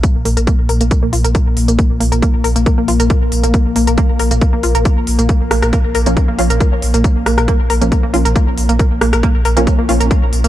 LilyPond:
<<
  \new Staff \with { instrumentName = "Synth arpeggio sound" } { \time 4/4 \key bes \minor \tempo 4 = 137 bes16 r16 bes16 bes'16 bes16 r16 bes'16 bes16 bes16 bes16 f'16 bes'16 bes16 r8 bes16 | bes16 r16 bes16 bes'16 bes16 r16 bes'16 bes16 bes16 bes16 f'16 bes'16 bes16 r8 bes16 | bes16 r16 bes16 bes'16 bes16 r16 bes'16 bes16 bes16 bes16 f'16 bes'16 bes16 r8 bes16 | bes16 r16 bes16 bes'16 bes16 r16 bes'16 bes16 bes16 bes16 f'16 bes'16 bes16 r8 bes16 |
bes16 r16 bes16 bes'16 bes16 r16 bes'16 bes16 bes16 bes16 f'16 bes'16 bes16 r8 bes16 | bes16 r16 bes16 bes'16 bes16 r16 bes'16 bes16 bes16 bes16 f'16 bes'16 bes16 r8 bes16 | }
  \new Staff \with { instrumentName = "Synth stab" } { \time 4/4 \key bes \minor r1 | r1 | r1 | r4. r16 <f bes des'>8 r16 <f bes des'>8 r4 |
r4. r16 <f bes des'>8 r16 <f bes des'>8 r4 | r4. r16 <f bes des'>8 r16 <f bes des'>8 r4 | }
  \new Staff \with { instrumentName = "Synth drone" } { \clef bass \time 4/4 \key bes \minor <bes, bes>1~ | <bes, bes>1~ | <bes, bes>1~ | <bes, bes>1~ |
<bes, bes>1~ | <bes, bes>1 | }
  \new Staff \with { instrumentName = "Sub bass" } { \clef bass \time 4/4 \key bes \minor r16 bes,,16 bes,,16 bes,,16 r16 bes,,16 bes,,16 bes,,16 r16 bes,,16 bes,,16 bes,,16 r16 bes,,16 bes,,16 bes,,16 | r16 bes,,16 bes,,16 bes,,16 r16 bes,,16 bes,,16 bes,,16 r16 bes,,16 bes,,16 bes,,16 r16 bes,,16 bes,,16 bes,,16 | r16 bes,,16 bes,,16 bes,,16 r16 bes,,16 bes,,16 bes,,16 r16 bes,,16 bes,,16 bes,,16 r16 bes,,16 bes,,16 bes,,16 | r16 bes,,16 bes,,16 bes,,16 r16 bes,,16 bes,,16 bes,,16 r16 bes,,16 bes,,16 bes,,16 r16 bes,,16 bes,,16 bes,,16 |
r16 bes,,16 bes,,16 bes,,16 r16 bes,,16 bes,,16 bes,,16 r16 bes,,16 bes,,16 bes,,16 r16 bes,,16 bes,,16 bes,,16 | r16 bes,,16 bes,,16 bes,,16 r16 bes,,16 bes,,16 bes,,16 r16 bes,,16 bes,,16 bes,,16 r16 bes,,16 bes,,16 bes,,16 | }
  \new DrumStaff \with { instrumentName = "Drums" } \drummode { \time 4/4 <hh bd>8 hho16 hh16 <hh bd>8 hho16 hh16 <hh bd>8 hho16 hh16 <hh bd>8 hho16 hh16 | <hh bd>8 hho16 hh16 <hh bd>8 hho16 hh16 <hh bd>8 hho16 hh16 <hh bd>8 hho16 hh16 | <hh bd>8 hho16 hh16 <hh bd>8 hho16 hh16 <hh bd>8 hho16 hh16 <hh bd>8 hho16 hh16 | <hh bd>8 <hho ss>16 <hh ss>16 <hh bd>8 hho16 hh16 <hh bd>8 hho16 hh16 <hh bd>8 hho16 hh16 |
<hh bd>8 <hho ss>16 <hh ss>16 <hh bd>8 hho16 hh16 <hh bd>8 hho16 hh16 <hh bd>8 hho16 hh16 | <hh bd>8 <hho ss>16 <hh ss>16 <hh bd>8 hho16 hh16 <hh bd>8 hho16 hh16 <hh bd>8 hho16 hh16 | }
>>